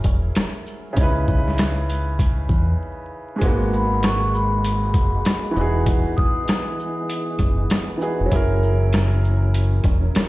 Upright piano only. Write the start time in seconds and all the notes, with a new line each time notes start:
Already playing: F#3 C#4 E4 G#4 A#4
0.93 C#3 C#4
0.98 D#4 E4
1.03 B4
3.36 G#2 G#3
3.41 A#3 F#4
3.46 A#3 B3
5.51 E3 B3
5.56 D#4 F#4
5.61 G#4
7.97 E3 B3 D#4 F#4
8.02 G#4
8.26 F#3 C#4
8.31 E4 G#4
8.36 A#4